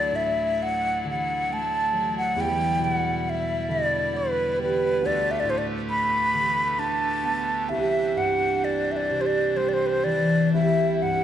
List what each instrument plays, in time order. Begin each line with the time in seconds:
Already playing: harp D2 A3, pipe organ F#3 E4 D5, flute D5
0.11 harp A2
0.16 flute E5
0.63 flute F#5
1.04 harp D3
1.10 flute F#5
1.50 harp A3, flute A5
1.93 harp F#3
2.18 flute F#5
2.36 harp E2, pipe organ G3
2.40 flute G5
2.79 harp B2
2.84 flute F#5
3.19 flute F#5
3.30 flute E5
3.69 harp D3, flute D5
4.13 harp B3, flute B4
4.57 harp G3
4.62 flute B4
5.01 harp D2, pipe organ D3 A3 G4 B4
5.06 flute D5
5.31 flute E5
5.40 flute D5
5.44 harp A2
5.50 flute C5
5.58 flute D5
5.90 flute B5
6.34 harp D3
6.79 harp D4, flute A5
7.24 harp B3
7.69 harp C2, pipe organ C5, flute E5
7.73 pipe organ E3 D4
8.16 harp G2, flute F#5
8.64 flute D5
8.92 flute E5
8.97 flute D5
9.10 harp C3
9.21 flute C5
9.26 flute D5
9.56 harp G3, flute C5
9.69 flute D5
9.73 flute C5
9.86 flute B4 C5
10.04 harp E3, flute D5
10.54 harp C2, pipe organ G3 E4, flute E5
11.02 harp G2, flute F#5